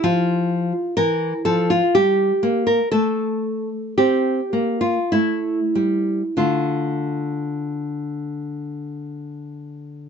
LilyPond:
\new Staff \with { instrumentName = "Nylon-string guitar" } { \time 3/4 \key d \minor \tempo 4 = 52 << { f'4 bes'8 a'16 f'16 g'8. bes'16 | a'4 g'8. f'16 e'4 | <d a f'>2. | } \\ { f4 e8 f8 g8 bes8 | a4 c'8 bes8 a8 g8 | r2. | } >> }